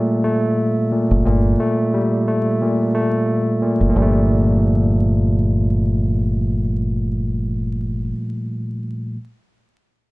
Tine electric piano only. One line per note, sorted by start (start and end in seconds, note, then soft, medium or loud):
0.00 0.92 A#2 medium
0.00 0.92 G3 medium
0.00 0.24 A3 medium
0.24 1.59 A3 medium
0.92 1.25 A#2 medium
1.26 2.61 A#2 medium
1.60 2.26 A3 medium
1.94 3.62 G3 medium
2.28 2.93 A3 medium
2.62 3.60 A#2 medium
2.94 3.96 A3 medium
3.62 3.89 A#2 medium
3.90 8.08 A#2 medium
3.90 8.10 F3 medium
3.98 8.12 G3 medium
4.02 8.14 A3 medium